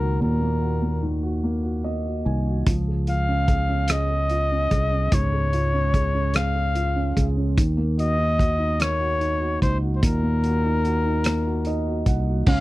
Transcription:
0.00 0.19 C#2 medium
0.00 1.03 D#3 medium
0.00 0.41 A#3 soft
0.00 0.61 F#4 soft
0.00 0.22 A#4 medium
0.20 2.22 D#2 medium
0.20 2.62 A#2 medium
0.20 1.10 A#4 medium
0.41 0.80 A#3 soft
0.61 1.21 F#4 soft
0.82 1.42 A#3 soft
1.03 2.24 D#3 soft
1.23 1.61 F#4 soft
1.44 1.83 A#3 soft
1.63 2.04 F#4 soft
1.84 2.64 A#3 soft
1.84 2.23 D#5 medium
2.06 2.45 F#4 soft
2.26 2.65 C2 medium
2.26 2.66 D#3 soft
2.26 2.64 G#5 soft
2.47 2.66 F#4 soft
2.67 4.68 C#2 medium
2.67 5.09 F3 medium
2.67 kick medium
2.67 closed hi-hat medium
2.88 3.88 G#3 soft
3.07 4.29 F4 soft
3.07 3.93 F5 medium
3.07 closed hi-hat soft
3.28 3.67 C#4 soft
3.48 4.09 G#4 soft
3.48 kick medium
3.48 closed hi-hat soft
3.69 4.50 C#4 soft
3.88 5.32 G#3 medium
3.88 cross-stick medium
3.88 closed hi-hat medium
3.92 5.16 D#5 medium
4.11 4.70 G#4 soft
4.29 5.51 F4 soft
4.29 closed hi-hat soft
4.52 4.91 C#4 soft
4.71 5.10 C2 medium
4.71 5.93 G#4 soft
4.71 kick medium
4.71 closed hi-hat soft
4.92 5.72 C#4 soft
5.12 7.13 C#2 medium
5.12 7.54 G#2 medium
5.12 6.38 C#5 medium
5.12 kick loud
5.12 closed hi-hat medium
5.33 6.33 G#3 soft
5.53 6.74 F4 soft
5.53 closed hi-hat soft
5.73 6.13 C#4 soft
5.94 6.53 G#4 soft
5.94 kick medium
5.94 closed hi-hat soft
6.14 6.94 C#4 soft
6.34 7.54 G#3 soft
6.34 7.28 F5 medium
6.34 cross-stick medium
6.34 closed hi-hat medium
6.55 7.15 G#4 soft
6.75 7.55 F4 soft
6.75 closed hi-hat soft
6.96 7.35 C#4 soft
7.16 7.55 C#2 medium
7.16 7.56 G#4 soft
7.16 kick medium
7.16 closed hi-hat soft
7.37 7.57 C#4 soft
7.57 9.58 D#2 medium
7.57 9.98 D#3 medium
7.57 kick loud
7.57 closed hi-hat medium
7.77 8.78 A#3 soft
7.98 8.37 F#4 soft
7.98 8.83 D#5 loud
7.98 closed hi-hat soft
8.18 8.57 D#4 soft
8.39 8.98 F#4 soft
8.39 kick medium
8.39 closed hi-hat soft
8.59 9.19 D#4 soft
8.79 10.21 A#3 medium
8.79 9.62 C#5 loud
8.79 cross-stick medium
8.79 closed hi-hat medium
9.00 9.39 F#4 soft
9.20 9.60 D#4 soft
9.20 closed hi-hat soft
9.40 9.81 F#4 soft
9.61 10.01 C#2 medium
9.61 10.63 D#4 soft
9.61 9.78 C5 medium
9.61 kick medium
9.61 closed hi-hat soft
9.82 10.43 F#4 soft
9.96 10.05 C5 soft
10.02 12.02 D#2 medium
10.02 12.43 A#2 medium
10.02 12.07 A#4 medium
10.02 kick medium
10.02 closed hi-hat medium
10.23 11.25 A#3 soft
10.44 10.83 F#4 soft
10.44 closed hi-hat soft
10.65 11.04 D#4 soft
10.84 11.45 F#4 soft
10.84 closed hi-hat soft
11.05 11.65 D#4 soft
11.24 12.44 A#3 soft
11.24 cross-stick medium
11.24 closed hi-hat medium
11.47 11.85 F#4 soft
11.65 12.05 D#4 soft
11.65 12.04 D#5 medium
11.65 closed hi-hat soft
11.86 12.25 F#4 soft
12.06 12.45 C2 medium
12.06 12.46 D#4 soft
12.06 12.44 F#5 soft
12.06 kick medium
12.06 closed hi-hat soft
12.27 12.46 F#4 soft
12.46 12.60 C#2 loud
12.46 12.60 C#4 medium
12.46 12.60 F5 loud
12.46 kick loud
12.46 crash loud

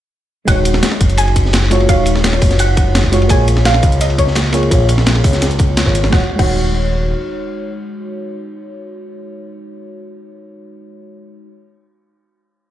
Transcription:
0.45 0.82 D#1 loud
0.45 1.68 G#3 loud
0.45 1.69 D#4 medium
0.45 1.70 F#4 medium
0.45 1.14 F#5 loud
0.45 kick loud
0.45 closed hi-hat loud
0.45 ride medium
0.50 1.70 C#5 loud
0.65 closed hi-hat medium
0.65 ride medium
0.74 snare soft
0.74 snare medium
0.83 snare loud
0.83 closed hi-hat loud
0.83 ride medium
0.92 snare medium
1.01 1.88 F#1 loud
1.01 kick loud
1.01 closed hi-hat medium
1.01 ride medium
1.10 closed hi-hat soft
1.17 1.85 G#5 loud
1.17 closed hi-hat loud
1.17 ride medium
1.28 ride soft
1.36 kick medium
1.36 closed hi-hat medium
1.36 ride medium
1.45 snare soft
1.53 snare loud
1.53 closed hi-hat loud
1.53 ride medium
1.70 1.85 G#3 loud
1.70 1.87 F4 medium
1.70 1.87 F#4 medium
1.70 1.87 C#5 loud
1.70 snare soft
1.70 closed hi-hat medium
1.70 ride medium
1.80 ride soft
1.87 2.23 D#1 loud
1.87 3.09 G#3 loud
1.87 3.10 D#4 medium
1.87 3.11 F#4 medium
1.87 2.62 F5 loud
1.87 kick loud
1.87 closed hi-hat loud
1.87 ride medium
1.91 3.12 C#5 loud
2.06 closed hi-hat medium
2.06 ride medium
2.16 snare medium
2.24 2.40 D#1 medium
2.24 snare loud
2.24 closed hi-hat medium
2.24 ride medium
2.33 snare medium
2.33 ride soft
2.41 3.29 F#1 loud
2.41 kick loud
2.41 open hi-hat medium
2.41 ride medium
2.50 snare soft
2.50 closed hi-hat soft
2.59 3.26 F#5 loud
2.59 closed hi-hat loud
2.59 ride loud
2.77 kick loud
2.77 closed hi-hat medium
2.77 ride medium
2.95 snare loud
2.95 closed hi-hat medium
2.95 ride medium
3.04 kick medium
3.11 3.27 G#3 loud
3.11 3.28 F4 medium
3.11 3.28 F#4 medium
3.11 3.29 C#5 loud
3.11 snare medium
3.11 closed hi-hat medium
3.11 ride medium
3.22 ride soft
3.28 3.64 A#1 loud
3.28 4.50 A#3 loud
3.28 4.51 F4 medium
3.28 4.52 G#4 medium
3.28 3.67 G#5 loud
3.28 kick loud
3.28 closed hi-hat medium
3.28 ride loud
3.32 4.53 C#5 loud
3.48 closed hi-hat medium
3.48 ride medium
3.56 snare soft
3.65 3.81 A#1 medium
3.65 4.02 F5 loud
3.65 snare loud
3.65 closed hi-hat loud
3.65 ride medium
3.74 snare medium
3.83 4.70 C#2 loud
3.83 kick loud
3.83 closed hi-hat medium
3.83 ride medium
3.92 closed hi-hat soft
4.01 4.19 D#5 medium
4.01 closed hi-hat loud
4.01 ride medium
4.10 ride soft
4.18 4.51 C#5 medium
4.18 kick medium
4.18 closed hi-hat medium
4.18 ride medium
4.27 snare soft
4.35 snare loud
4.35 closed hi-hat medium
4.35 ride medium
4.52 4.68 A#3 loud
4.52 4.69 F4 medium
4.52 4.69 G#4 medium
4.52 4.70 C#5 loud
4.52 snare soft
4.52 closed hi-hat medium
4.52 ride medium
4.63 ride soft
4.69 5.05 A#1 loud
4.69 5.83 A#3 loud
4.69 5.84 F4 medium
4.69 5.85 G#4 medium
4.69 kick loud
4.69 closed hi-hat medium
4.69 ride medium
4.73 5.85 C#5 loud
4.89 closed hi-hat medium
4.89 ride medium
4.98 snare medium
4.98 snare soft
5.06 5.23 A#1 medium
5.06 snare loud
5.06 closed hi-hat medium
5.06 ride medium
5.15 snare medium
5.15 ride soft
5.24 5.86 C#2 loud
5.24 kick loud
5.24 open hi-hat medium
5.24 ride medium
5.33 snare soft
5.33 closed hi-hat soft
5.42 snare loud
5.42 closed hi-hat medium
5.42 ride medium
5.51 closed hi-hat soft
5.59 kick loud
5.59 closed hi-hat medium
5.59 ride medium
5.77 snare loud
5.77 closed hi-hat medium
5.77 ride medium
5.85 6.11 G#1 medium
5.85 6.10 A#3 medium
5.85 6.10 F4 medium
5.85 6.11 G#4 medium
5.85 6.11 C#5 medium
5.85 kick medium
5.95 closed hi-hat medium
5.95 ride medium
6.04 snare soft
6.04 snare medium
6.09 6.22 D#1 medium
6.09 6.21 G#3 medium
6.09 6.22 F4 medium
6.09 6.22 F#5 medium
6.09 kick loud
6.09 snare medium
6.14 6.23 F#4 medium
6.14 6.24 C#5 loud
6.36 7.14 D#1 loud
6.36 10.39 G#3 medium
6.36 10.40 D#4 medium
6.36 10.41 F#5 medium
6.36 kick loud
6.36 crash medium
6.40 10.41 F#4 medium
6.40 10.43 C#5 medium

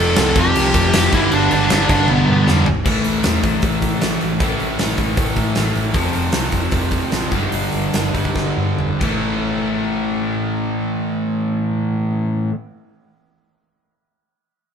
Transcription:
0.00 0.13 F1 loud
0.00 0.35 F2 loud
0.00 0.36 C3 loud
0.00 0.35 F3 loud
0.00 0.17 A4 loud
0.16 0.33 C2 loud
0.16 0.38 A4 loud
0.16 snare loud
0.16 crash loud
0.36 0.51 F1 loud
0.36 1.12 F2 medium
0.36 1.13 C3 medium
0.36 1.12 F3 medium
0.36 1.11 G4 loud
0.36 kick loud
0.36 crash medium
0.55 0.71 C2 loud
0.55 crash loud
0.74 0.89 F1 loud
0.74 kick loud
0.74 crash medium
0.93 1.09 F1 medium
0.93 snare loud
0.93 crash loud
1.12 1.28 G1 medium
1.12 1.69 G2 medium
1.12 1.70 D3 loud
1.12 1.71 G3 loud
1.12 1.33 E4 loud
1.12 kick loud
1.12 crash medium
1.31 1.47 G1 medium
1.31 1.52 D4 loud
1.31 crash medium
1.51 1.67 G1 loud
1.51 1.89 D4 medium
1.51 crash medium
1.70 1.86 G1 loud
1.70 2.66 G2 medium
1.70 2.66 D3 medium
1.70 2.67 G3 medium
1.70 snare loud
1.70 crash medium
1.89 2.05 G1 loud
1.89 2.10 D4 medium
1.89 kick loud
1.89 crash medium
2.08 2.24 G1 loud
2.08 2.48 B3 medium
2.08 high tom medium
2.28 2.44 G2 medium
2.47 2.63 F2 medium
2.47 2.65 G2 medium
2.47 2.66 D3 medium
2.47 2.67 G3 medium
2.47 snare medium
2.66 2.83 G1 medium
2.66 floor tom medium
2.86 2.99 A1 medium
2.86 3.62 A2 medium
2.86 3.64 E3 medium
2.86 3.66 A3 loud
2.86 kick loud
2.86 crash loud
3.04 3.20 A1 loud
3.04 open hi-hat medium
3.24 3.38 E2 medium
3.24 snare loud
3.24 open hi-hat medium
3.43 3.57 A1 medium
3.43 kick medium
3.43 open hi-hat medium
3.62 3.90 A1 medium
3.62 4.39 A2 medium
3.62 4.40 E3 medium
3.62 kick loud
3.62 open hi-hat medium
3.66 4.43 A3 medium
3.82 kick medium
3.82 open hi-hat medium
4.01 4.16 A1 medium
4.01 snare loud
4.01 open hi-hat medium
4.21 4.36 A1 medium
4.21 open hi-hat soft
4.40 4.54 A1 medium
4.40 5.16 A2 medium
4.40 5.17 E3 medium
4.40 5.18 A3 medium
4.40 kick loud
4.40 open hi-hat medium
4.60 4.74 A1 medium
4.60 open hi-hat medium
4.79 4.93 A1 medium
4.79 snare loud
4.79 open hi-hat medium
4.89 snare soft
4.98 5.12 A1 medium
4.98 kick medium
4.98 open hi-hat soft
5.17 5.31 A1 medium
5.17 5.93 A2 medium
5.17 5.95 E3 medium
5.17 kick loud
5.17 open hi-hat medium
5.21 5.95 A3 medium
5.36 5.50 A2 medium
5.36 kick medium
5.36 open hi-hat medium
5.55 5.70 A1 medium
5.55 snare loud
5.55 open hi-hat medium
5.75 5.89 A1 medium
5.75 open hi-hat medium
5.94 6.08 F1 medium
5.94 6.72 F2 medium
5.94 6.73 C3 loud
5.94 kick loud
5.94 open hi-hat medium
5.99 6.73 F3 loud
6.13 6.28 F1 medium
6.13 open hi-hat medium
6.32 6.48 C2 medium
6.32 snare loud
6.32 open hi-hat medium
6.52 6.66 F1 medium
6.52 kick medium
6.52 open hi-hat medium
6.71 7.00 F1 medium
6.71 7.31 F2 medium
6.71 7.32 C3 medium
6.71 kick loud
6.71 open hi-hat medium
6.76 7.33 F3 medium
6.91 kick medium
6.91 open hi-hat medium
7.12 7.26 A1 medium
7.12 snare medium
7.12 open hi-hat medium
7.32 7.46 G1 medium
7.32 8.13 G2 medium
7.32 8.15 D3 medium
7.32 kick medium
7.32 open hi-hat soft
7.36 8.12 G3 medium
7.52 7.66 G1 medium
7.52 open hi-hat medium
7.73 7.87 G1 medium
7.73 open hi-hat medium
7.94 8.09 G1 medium
7.94 snare loud
7.94 open hi-hat medium
8.14 8.29 G1 medium
8.14 9.01 G2 medium
8.14 9.01 D3 medium
8.14 9.00 G3 medium
8.14 kick medium
8.14 open hi-hat medium
8.25 kick medium
8.36 8.51 G1 medium
8.36 kick medium
8.36 snare medium
8.57 8.72 G2 medium
8.79 8.94 G1 medium
8.79 mid tom medium
9.01 12.01 A1 medium
9.01 12.51 A2 medium
9.01 12.54 E3 medium
9.01 12.55 A3 medium
9.01 kick medium
9.01 crash medium

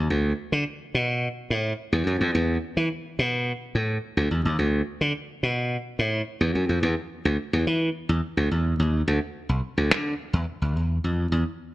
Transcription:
0.10 0.32 D2 medium
0.52 0.63 D3 medium
0.95 1.27 B2 medium
1.50 1.72 A2 medium
1.93 2.04 E2 medium
2.07 2.18 F#2 medium
2.21 2.32 F2 medium
2.35 2.57 E2 loud
2.77 2.88 E3 medium
3.19 3.52 B2 medium
3.75 3.97 A2 medium
4.17 4.28 D2 medium
4.31 4.42 E2 medium
4.45 4.56 D#2 medium
4.59 4.81 D2 loud
5.01 5.12 D3 medium
5.43 5.76 B2 medium
5.99 6.21 A2 medium
6.41 6.52 E2 medium
6.55 6.66 F#2 medium
6.69 6.80 F2 medium
6.83 6.94 E2 loud
7.25 7.36 D2 medium
7.53 7.64 E2 loud
7.67 7.89 E3 loud
8.09 8.20 E2 loud
8.37 8.48 D2 medium
8.51 8.73 E2 medium
8.80 9.01 D#2 loud
9.08 9.19 D2 loud
9.49 9.60 C2 medium
9.78 9.91 D2 loud
9.91 10.13 D3 loud
10.33 10.45 E2 loud
10.62 10.76 D2 medium
10.76 10.98 E2 medium
11.04 11.26 F2 medium
11.32 11.43 E2 loud

